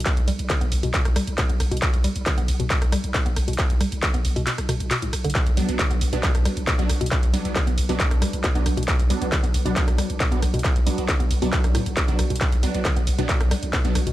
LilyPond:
<<
  \new Staff \with { instrumentName = "Synth stab" } { \time 4/4 \key b \minor \tempo 4 = 136 r1 | r1 | r1 | r8 <fis b d'>16 <fis b d'>16 r8. <fis b d'>4. <fis b d'>16 r8 |
r8 <fis b d'>16 <fis b d'>16 r8. <fis b d'>4. <fis b d'>16 r8 | r8 <fis b d'>16 <fis b d'>16 r8. <fis b d'>4. <fis b d'>16 r8 | r8 <fis b d'>16 <fis b d'>16 r8. <fis b d'>4. <fis b d'>16 r8 | r8 <fis b d'>16 <fis b d'>16 r8. <fis b d'>4. <fis b d'>16 r8 | }
  \new Staff \with { instrumentName = "Synth arpeggio sound" } { \clef bass \time 4/4 \key b \minor b,16 r16 g16 r16 d16 b16 r16 b,16 b,16 r16 g16 r16 b,16 b16 r16 b,16 | b,16 r16 g16 r16 d16 b16 r16 b,16 b,16 r16 g16 r16 b,16 b16 r16 b,16 | b,16 r16 g16 r16 d16 b16 r16 b,16 b,16 r16 b,16 r16 b,16 a,16 r16 d16 | b,16 r16 g16 r16 d16 b16 r16 b,16 b,16 r16 g16 r16 b,16 b16 r16 b,16 |
b,16 r16 g16 r16 d16 b16 r16 b,16 b,16 r16 g16 r16 b,16 b16 r16 b,16 | b,16 r16 g16 r16 d16 b16 r16 b,16 b,16 r16 g16 r16 b,16 b16 r16 b,16 | b,16 r16 g16 r16 d16 b16 r16 b,16 b,16 r16 a,16 r16 cis16 cis16 r16 b,16 | b,16 r16 g16 r16 d16 b16 r16 b,16 b,16 r16 g16 r16 b,16 b16 r16 b,16 | }
  \new Staff \with { instrumentName = "808-style bass" } { \clef bass \time 4/4 \key b \minor r16 b,,16 b,,16 b,,16 r16 b,,16 b,,16 b,,16 r16 b,,16 b,,16 b,,16 r16 b,,16 b,,16 b,,16 | r16 b,,16 b,,16 b,,16 r16 b,,16 b,,16 b,,16 r16 b,,16 b,,16 b,,16 r16 b,,16 b,,16 b,,16 | r16 b,,16 b,,16 b,,16 r16 b,,16 b,,16 b,,16 r16 b,,16 b,,16 b,,16 r16 b,,16 b,,16 b,,16 | r16 b,,16 b,,16 b,,16 r16 b,,16 b,,16 b,,16 r16 b,,16 b,,16 b,,16 r16 b,,16 b,,16 b,,16 |
r16 b,,16 b,,16 b,,16 r16 b,,16 b,,16 b,,16 r16 b,,16 b,,16 b,,16 r16 b,,16 b,,16 b,,16 | r16 b,,16 b,,16 b,,16 r16 b,,16 b,,16 b,,16 r16 b,,16 b,,16 b,,16 r16 b,,16 b,,16 b,,16 | r16 b,,16 b,,16 b,,16 r16 b,,16 b,,16 b,,16 r16 b,,16 b,,16 b,,16 r16 b,,16 b,,16 b,,16 | r16 b,,16 b,,16 b,,16 r16 b,,16 b,,16 b,,16 r16 b,,16 b,,16 b,,16 r16 b,,16 b,,16 b,,16 | }
  \new DrumStaff \with { instrumentName = "Drums" } \drummode { \time 4/4 <hc hh bd cymr>16 <hh cymr>16 <hho cymr>16 <hh cymr>16 <hc hh bd cymr>16 <hh cymr>16 <hho cymr>16 <hho cymr>16 <hc hh bd cymr>16 <hh cymr ss>16 <hho cymr ss>16 <hh cymr>16 <hc hh bd cymr>16 <hh cymr>16 <hho cymr ss>16 <hh cymr>32 hh32 | <hc hh bd cymr>16 <hh cymr>16 <hho cymr>16 <hh cymr>16 <hc hh bd cymr>16 <hh cymr>16 <hho cymr>16 <hh cymr>16 <hc hh bd cymr>16 <hh cymr ss>16 <hho cymr ss>16 <hh cymr>16 <hc hh bd cymr>16 <hh cymr>16 <hho cymr ss>16 <hh cymr>32 hh32 | <hc hh bd cymr>16 <hh cymr>16 <hho cymr ss>16 <hh cymr>16 <hc hh bd cymr>16 <hh cymr>16 <hho cymr>16 <hho cymr>16 <hc hh cymr>16 <hh cymr ss>16 <hho cymr ss>16 <hh cymr>16 <hc hh cymr>16 <hh cymr>16 <hho cymr ss>16 <hh cymr>32 hh32 | <hc hh bd cymr>16 <hh cymr>16 <hho cymr>16 <hh cymr>16 <hc hh bd cymr>16 <hh cymr>16 <hho cymr>16 <hh cymr>16 <hc hh bd cymr>16 <hh cymr ss>16 <hho cymr ss>16 <hh cymr>16 <hc hh bd cymr>16 <hh cymr>16 <hho cymr ss>16 <hh cymr>32 hh32 |
<hc hh bd cymr>16 <hh cymr>16 <hho cymr>16 <hh cymr>16 <hc hh bd cymr>16 <hh cymr>16 <hho cymr>16 <hho cymr>16 <hc hh bd cymr>16 <hh cymr ss>16 <hho cymr ss>16 <hh cymr>16 <hc hh bd cymr>16 <hh cymr>16 <hho cymr ss>16 <hh cymr>32 hh32 | <hc hh bd cymr>16 <hh cymr>16 <hho cymr>16 <hh cymr>16 <hc hh bd cymr>16 <hh cymr>16 <hho cymr>16 <hh cymr>16 <hc hh bd cymr>16 <hh cymr ss>16 <hho cymr ss>16 <hh cymr>16 <hc hh bd cymr>16 <hh cymr>16 <hho cymr ss>16 <hh cymr>32 hh32 | <hc hh bd cymr>16 <hh cymr>16 <hho cymr>16 <hh cymr>16 <hc hh bd cymr>16 <hh cymr>16 <hho cymr>16 <hho cymr>16 <hc hh bd cymr>16 <hh cymr ss>16 <hho cymr ss>16 <hh cymr>16 <hc hh bd cymr>16 <hh cymr>16 <hho cymr ss>16 <hh cymr>32 hh32 | <hc hh bd cymr>16 <hh cymr>16 <hho cymr>16 <hh cymr>16 <hc hh bd cymr>16 <hh cymr>16 <hho cymr>16 <hh cymr>16 <hc hh bd cymr>16 <hh cymr ss>16 <hho cymr ss>16 <hh cymr>16 <hc hh bd cymr>16 <hh cymr>16 <hho cymr ss>16 <hh cymr>16 | }
>>